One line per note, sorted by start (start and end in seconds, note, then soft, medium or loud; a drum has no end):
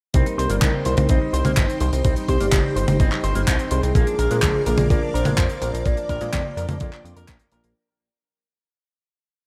0.14 0.24 C2 loud
0.14 0.47 G3 medium
0.14 0.47 C4 medium
0.14 0.26 C4 loud
0.14 0.47 D#4 medium
0.14 3.91 D#4 medium
0.14 1.11 A#4 loud
0.14 0.47 C5 medium
0.14 3.91 C5 medium
0.14 3.92 G5 medium
0.14 3.91 C6 medium
0.14 kick loud
0.14 closed hi-hat medium
0.26 0.35 D#4 medium
0.26 closed hi-hat medium
0.38 0.48 C2 loud
0.38 0.49 C5 loud
0.38 closed hi-hat medium
0.50 0.60 G1 medium
0.50 0.83 G3 medium
0.50 0.55 A#3 loud
0.50 0.83 C4 medium
0.50 0.83 D#4 medium
0.50 0.83 D5 medium
0.50 closed hi-hat medium
0.62 0.71 C2 loud
0.62 0.70 D#4 loud
0.62 kick loud
0.62 clap loud
0.62 closed hi-hat medium
0.62 high tom medium
0.74 0.82 C4 medium
0.85 0.95 C2 medium
0.85 1.01 G3 medium
0.85 1.01 C4 medium
0.85 1.01 D#4 medium
0.85 1.01 C5 loud
0.85 0.94 C5 medium
0.85 closed hi-hat medium
0.97 1.07 C2 medium
0.97 1.06 C4 medium
0.97 closed hi-hat medium
0.97 high tom medium
1.09 1.19 C2 loud
1.09 1.42 G3 loud
1.09 1.42 C4 medium
1.09 1.21 C4 loud
1.09 1.42 D#4 medium
1.09 2.04 C5 loud
1.09 1.42 D#5 loud
1.09 kick loud
1.09 closed hi-hat medium
1.21 1.30 D#4 medium
1.33 1.43 C2 medium
1.33 1.45 C5 loud
1.33 closed hi-hat medium
1.45 1.55 C2 medium
1.45 1.61 G3 medium
1.45 1.50 A#3 loud
1.45 1.61 C4 medium
1.45 1.61 D#4 medium
1.45 1.61 C5 medium
1.45 closed hi-hat medium
1.45 high tom medium
1.57 1.67 G1 loud
1.57 1.65 D#4 loud
1.57 kick loud
1.57 clap loud
1.57 closed hi-hat medium
1.69 1.77 C4 medium
1.69 closed hi-hat medium
1.80 1.90 C2 loud
1.80 2.02 G3 medium
1.80 2.02 C4 medium
1.80 2.02 D#4 medium
1.80 2.02 C5 medium
1.80 1.89 C5 medium
1.80 closed hi-hat medium
1.93 2.02 C2 medium
1.93 2.01 C4 medium
1.93 closed hi-hat medium
2.04 2.14 C2 loud
2.04 2.38 G3 medium
2.04 2.38 C4 medium
2.04 2.16 C4 loud
2.04 2.38 D#4 medium
2.04 2.38 C5 medium
2.04 2.15 C5 loud
2.04 kick loud
2.04 closed hi-hat medium
2.16 2.25 D#4 medium
2.16 closed hi-hat medium
2.28 2.38 C2 medium
2.28 2.96 G4 medium
2.28 2.40 C5 loud
2.28 kick medium
2.28 closed hi-hat medium
2.40 2.50 G1 medium
2.40 2.73 G3 medium
2.40 2.45 A#3 loud
2.40 2.73 C4 medium
2.40 2.73 D#4 medium
2.40 2.73 D5 medium
2.40 closed hi-hat medium
2.52 2.62 G1 loud
2.52 2.61 D#4 loud
2.52 kick loud
2.52 clap loud
2.52 closed hi-hat medium
2.52 high tom medium
2.64 2.73 C4 medium
2.76 2.86 G1 medium
2.76 2.92 G3 loud
2.76 2.92 C4 medium
2.76 2.92 D#4 medium
2.76 2.84 C5 medium
2.76 2.92 C5 loud
2.76 closed hi-hat medium
2.88 2.98 G1 medium
2.88 2.96 C4 medium
2.88 closed hi-hat medium
2.88 high tom medium
3.00 3.10 G1 loud
3.00 3.33 G3 loud
3.00 3.11 C4 loud
3.00 3.33 C4 medium
3.00 3.33 D#4 medium
3.00 3.33 D#5 loud
3.00 kick loud
3.00 closed hi-hat loud
3.12 3.20 D#4 medium
3.12 clap soft
3.24 3.33 G1 loud
3.24 3.35 C5 loud
3.24 closed hi-hat medium
3.35 3.45 G1 medium
3.35 3.51 G3 medium
3.35 3.41 A#3 loud
3.35 3.51 C4 medium
3.35 3.51 D#4 medium
3.35 3.51 C5 medium
3.35 closed hi-hat medium
3.47 3.57 C2 loud
3.47 3.56 D#4 loud
3.47 kick loud
3.47 clap loud
3.47 closed hi-hat medium
3.59 3.68 C4 medium
3.59 closed hi-hat medium
3.71 3.81 C2 medium
3.71 3.92 G3 medium
3.71 3.92 C4 medium
3.71 3.92 D#4 medium
3.71 4.92 G#4 loud
3.71 3.80 C5 medium
3.71 3.92 C5 medium
3.71 closed hi-hat medium
3.83 3.93 C2 medium
3.83 3.92 C4 medium
3.83 closed hi-hat medium
3.95 4.05 A#1 loud
3.95 4.28 F3 medium
3.95 4.06 A#3 loud
3.95 4.28 A#3 medium
3.95 4.28 D4 medium
3.95 4.28 A#4 medium
3.95 7.72 A#4 medium
3.95 7.72 D5 medium
3.95 5.84 F5 medium
3.95 7.72 D6 medium
3.95 kick loud
3.95 closed hi-hat loud
4.07 4.15 D4 medium
4.07 closed hi-hat medium
4.19 4.29 A#1 medium
4.19 4.30 A#4 loud
4.19 closed hi-hat medium
4.31 4.41 A#2 medium
4.31 4.64 F3 medium
4.31 4.36 G#3 loud
4.31 4.64 A#3 medium
4.31 4.64 D4 medium
4.31 4.64 C5 medium
4.31 closed hi-hat medium
4.42 4.52 A#1 loud
4.42 4.51 D4 loud
4.42 kick loud
4.42 clap loud
4.42 closed hi-hat medium
4.42 high tom medium
4.55 4.63 A#3 medium
4.66 4.76 A#1 medium
4.66 4.82 F3 loud
4.66 4.82 A#3 medium
4.66 4.82 D4 medium
4.66 4.75 A#4 medium
4.66 4.82 A#4 loud
4.66 closed hi-hat loud
4.78 4.88 A#1 medium
4.78 4.87 A#3 medium
4.78 closed hi-hat medium
4.78 high tom medium
4.90 5.00 A#1 loud
4.90 5.23 F3 loud
4.90 5.02 A#3 loud
4.90 5.23 A#3 medium
4.90 5.23 D4 medium
4.90 5.15 A#4 loud
4.90 5.23 D5 loud
4.90 kick loud
4.90 closed hi-hat medium
5.02 5.11 D4 medium
5.14 5.24 A#1 loud
5.14 5.25 A#4 loud
5.14 5.87 C5 loud
5.14 closed hi-hat medium
5.25 5.36 A#1 medium
5.25 5.42 F3 medium
5.25 5.31 G#3 loud
5.25 5.42 A#3 medium
5.25 5.42 D4 medium
5.25 5.42 A#4 medium
5.25 closed hi-hat medium
5.25 high tom medium
5.38 5.48 F2 loud
5.38 5.46 D4 loud
5.38 kick loud
5.38 clap loud
5.38 closed hi-hat medium
5.50 5.58 A#3 medium
5.50 closed hi-hat medium
5.62 5.71 A#1 loud
5.62 5.83 F3 medium
5.62 5.83 A#3 medium
5.62 5.83 D4 medium
5.62 5.70 A#4 medium
5.62 5.83 A#4 medium
5.62 closed hi-hat loud
5.74 5.83 A#1 medium
5.74 5.82 A#3 medium
5.74 closed hi-hat medium
5.86 5.95 A#1 loud
5.86 6.18 F3 medium
5.86 5.97 A#3 loud
5.86 6.18 A#3 medium
5.86 6.18 D4 medium
5.86 6.18 A#4 medium
5.86 6.09 D5 loud
5.86 7.74 G5 medium
5.86 kick loud
5.86 closed hi-hat medium
5.97 6.06 D4 medium
5.97 closed hi-hat soft
6.09 6.19 A#1 medium
6.09 6.21 A#4 loud
6.09 7.01 D5 loud
6.09 kick medium
6.09 closed hi-hat medium
6.21 6.31 A#2 medium
6.21 6.54 F3 medium
6.21 6.26 G#3 loud
6.21 6.54 A#3 medium
6.21 6.54 D4 medium
6.21 6.54 C5 medium
6.21 closed hi-hat medium
6.33 6.43 F2 loud
6.33 6.42 D4 loud
6.33 kick loud
6.33 clap loud
6.33 closed hi-hat medium
6.33 high tom medium
6.45 6.53 A#3 medium
6.57 6.67 F2 loud
6.57 6.73 F3 loud
6.57 6.73 A#3 medium
6.57 6.73 D4 medium
6.57 6.65 A#4 medium
6.57 6.73 A#4 loud
6.57 closed hi-hat medium
6.69 6.79 F2 medium
6.69 6.77 A#3 medium
6.69 closed hi-hat medium
6.69 high tom medium
6.80 6.91 F2 loud
6.80 7.14 F3 loud
6.80 6.92 A#3 loud
6.80 7.14 A#3 medium
6.80 7.14 D4 medium
6.80 7.14 D5 loud
6.80 kick loud
6.80 closed hi-hat medium
6.93 7.01 D4 medium
6.93 clap soft
7.05 7.14 F2 loud
7.05 7.16 F4 medium
7.05 closed hi-hat medium
7.16 7.26 F2 medium
7.16 7.32 F3 medium
7.16 7.32 A#3 medium
7.16 7.32 D4 medium
7.16 7.27 A#4 loud
7.16 7.32 A#4 medium
7.16 closed hi-hat medium
7.28 7.38 A#1 loud
7.28 kick loud
7.28 clap loud
7.28 closed hi-hat loud
7.40 7.45 A#3 medium
7.40 closed hi-hat medium
7.52 7.62 A#1 loud
7.52 7.73 F3 medium
7.52 7.73 A#3 medium
7.52 7.73 D4 medium
7.52 7.73 A#4 medium
7.52 7.64 A#4 medium
7.52 closed hi-hat medium
7.64 7.74 A#1 medium
7.64 7.69 A#3 medium
7.64 closed hi-hat medium